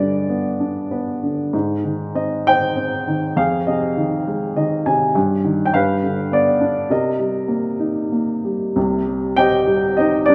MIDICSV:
0, 0, Header, 1, 2, 480
1, 0, Start_track
1, 0, Key_signature, -3, "minor"
1, 0, Tempo, 613497
1, 1202, Time_signature, 3, 2, 24, 8
1, 3113, Tempo, 584226
1, 5993, Tempo, 638298
1, 6953, Tempo, 609756
1, 8203, End_track
2, 0, Start_track
2, 0, Title_t, "Grand piano"
2, 0, Program_c, 0, 0
2, 0, Control_c, 0, 64, 127
2, 0, Note_on_c, 0, 43, 46
2, 0, Note_on_c, 0, 50, 30
2, 0, Note_on_c, 0, 71, 38
2, 0, Note_on_c, 0, 74, 60
2, 227, Note_on_c, 0, 59, 38
2, 471, Note_on_c, 0, 62, 34
2, 679, Note_off_c, 0, 74, 0
2, 684, Note_off_c, 0, 71, 0
2, 703, Note_off_c, 0, 59, 0
2, 714, Note_on_c, 0, 71, 39
2, 715, Note_on_c, 0, 59, 33
2, 935, Note_off_c, 0, 50, 0
2, 963, Note_on_c, 0, 50, 31
2, 1170, Note_off_c, 0, 71, 0
2, 1172, Note_off_c, 0, 43, 0
2, 1181, Note_off_c, 0, 62, 0
2, 1187, Note_off_c, 0, 59, 0
2, 1195, Note_off_c, 0, 50, 0
2, 1200, Note_on_c, 0, 44, 49
2, 1212, Control_c, 0, 64, 0
2, 1356, Control_c, 0, 64, 127
2, 1442, Note_on_c, 0, 51, 34
2, 1682, Note_on_c, 0, 60, 37
2, 1686, Note_on_c, 0, 75, 56
2, 1933, Note_on_c, 0, 63, 42
2, 1933, Note_on_c, 0, 79, 82
2, 1939, Note_off_c, 0, 75, 0
2, 1941, Note_on_c, 0, 72, 47
2, 2152, Note_off_c, 0, 60, 0
2, 2163, Note_on_c, 0, 60, 40
2, 2376, Note_off_c, 0, 51, 0
2, 2404, Note_on_c, 0, 51, 40
2, 2610, Note_off_c, 0, 44, 0
2, 2615, Note_off_c, 0, 72, 0
2, 2622, Note_off_c, 0, 63, 0
2, 2625, Note_off_c, 0, 60, 0
2, 2632, Note_on_c, 0, 41, 54
2, 2635, Note_off_c, 0, 51, 0
2, 2636, Note_on_c, 0, 77, 72
2, 2647, Note_on_c, 0, 68, 50
2, 2652, Control_c, 0, 64, 0
2, 2664, Note_off_c, 0, 79, 0
2, 2795, Control_c, 0, 64, 127
2, 2860, Note_off_c, 0, 77, 0
2, 2869, Note_on_c, 0, 75, 55
2, 2870, Note_off_c, 0, 68, 0
2, 2874, Note_on_c, 0, 48, 37
2, 2882, Note_on_c, 0, 68, 47
2, 3106, Note_on_c, 0, 51, 43
2, 3357, Note_on_c, 0, 56, 44
2, 3582, Note_off_c, 0, 75, 0
2, 3586, Note_off_c, 0, 51, 0
2, 3594, Note_on_c, 0, 75, 56
2, 3598, Note_on_c, 0, 51, 47
2, 3806, Note_off_c, 0, 48, 0
2, 3807, Note_off_c, 0, 68, 0
2, 3819, Note_off_c, 0, 75, 0
2, 3838, Note_on_c, 0, 48, 49
2, 3838, Note_on_c, 0, 80, 63
2, 4039, Note_off_c, 0, 41, 0
2, 4054, Note_off_c, 0, 56, 0
2, 4060, Note_off_c, 0, 80, 0
2, 4062, Note_off_c, 0, 51, 0
2, 4070, Note_off_c, 0, 48, 0
2, 4077, Note_on_c, 0, 43, 58
2, 4089, Control_c, 0, 64, 0
2, 4221, Control_c, 0, 64, 127
2, 4316, Note_on_c, 0, 51, 40
2, 4490, Note_on_c, 0, 79, 62
2, 4541, Note_off_c, 0, 43, 0
2, 4552, Note_off_c, 0, 51, 0
2, 4553, Note_off_c, 0, 79, 0
2, 4553, Note_on_c, 0, 43, 51
2, 4558, Note_on_c, 0, 77, 79
2, 4570, Control_c, 0, 64, 0
2, 4570, Note_on_c, 0, 71, 55
2, 4728, Control_c, 0, 64, 127
2, 4798, Note_on_c, 0, 50, 39
2, 5036, Note_on_c, 0, 59, 39
2, 5046, Note_on_c, 0, 74, 67
2, 5053, Note_off_c, 0, 77, 0
2, 5247, Note_off_c, 0, 71, 0
2, 5271, Note_on_c, 0, 62, 46
2, 5480, Note_off_c, 0, 43, 0
2, 5483, Note_off_c, 0, 74, 0
2, 5489, Note_off_c, 0, 50, 0
2, 5496, Note_off_c, 0, 59, 0
2, 5503, Note_off_c, 0, 62, 0
2, 5511, Note_on_c, 0, 48, 54
2, 5522, Control_c, 0, 64, 0
2, 5522, Note_on_c, 0, 70, 46
2, 5523, Note_on_c, 0, 75, 59
2, 5665, Control_c, 0, 64, 127
2, 5752, Note_on_c, 0, 55, 29
2, 5991, Note_on_c, 0, 58, 36
2, 6226, Note_on_c, 0, 63, 36
2, 6443, Note_off_c, 0, 70, 0
2, 6443, Note_off_c, 0, 75, 0
2, 6461, Note_off_c, 0, 58, 0
2, 6472, Note_on_c, 0, 58, 31
2, 6687, Note_off_c, 0, 55, 0
2, 6715, Note_on_c, 0, 55, 35
2, 6924, Note_off_c, 0, 48, 0
2, 6932, Note_off_c, 0, 63, 0
2, 6941, Note_off_c, 0, 58, 0
2, 6947, Note_off_c, 0, 55, 0
2, 6951, Note_on_c, 0, 36, 53
2, 6951, Note_on_c, 0, 48, 60
2, 6966, Control_c, 0, 64, 0
2, 7113, Control_c, 0, 64, 127
2, 7192, Note_on_c, 0, 55, 36
2, 7429, Note_on_c, 0, 79, 82
2, 7435, Note_on_c, 0, 60, 45
2, 7450, Note_on_c, 0, 67, 57
2, 7450, Note_on_c, 0, 75, 60
2, 7658, Note_off_c, 0, 55, 0
2, 7670, Note_on_c, 0, 55, 49
2, 7879, Note_off_c, 0, 79, 0
2, 7890, Note_off_c, 0, 67, 0
2, 7890, Note_off_c, 0, 75, 0
2, 7903, Note_off_c, 0, 60, 0
2, 7903, Note_on_c, 0, 75, 68
2, 7915, Note_on_c, 0, 60, 44
2, 7929, Note_on_c, 0, 63, 57
2, 8131, Note_on_c, 0, 74, 85
2, 8140, Note_off_c, 0, 55, 0
2, 8144, Note_off_c, 0, 63, 0
2, 8151, Note_on_c, 0, 55, 55
2, 8155, Note_off_c, 0, 75, 0
2, 8159, Note_on_c, 0, 62, 61
2, 8203, Note_off_c, 0, 36, 0
2, 8203, Note_off_c, 0, 48, 0
2, 8203, Note_off_c, 0, 55, 0
2, 8203, Note_off_c, 0, 60, 0
2, 8203, Note_off_c, 0, 62, 0
2, 8203, Note_off_c, 0, 74, 0
2, 8203, End_track
0, 0, End_of_file